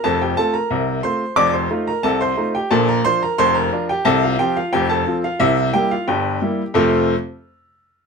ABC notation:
X:1
M:2/4
L:1/16
Q:1/4=89
K:F
V:1 name="Upright piano"
[Aa] [Gg] [Aa] [Bb]3 [cc']2 | [dd'] [cc']2 [Bb] [Aa] [cc']2 [Gg] | [Aa] [Bb] [cc'] [Bb] [cc'] [Bb]2 [Gg] | [Aa] [Ff] [Gg] [Ff] [Gg] [Aa]2 [Ff] |
[Ee]2 [Gg] [Ff] [Gg]4 | [F,,C,A,CFAf]2 z6 |]
V:2 name="Upright piano" clef=bass
[F,,,F,,]2 [A,CF]2 [C,,C,]2 [A,CF]2 | [F,,,F,,]2 [A,_EF]2 [C,,C,]2 [A,EF]2 | [B,,,B,,]2 [F,DF]2 [F,,,F,,]2 [F,DF]2 | [C,,C,]2 [F,CF]2 [F,,,F,,]2 [F,CF]2 |
[C,,C,]2 [G,B,E]2 [G,,,G,,]2 [G,B,E]2 | z8 |]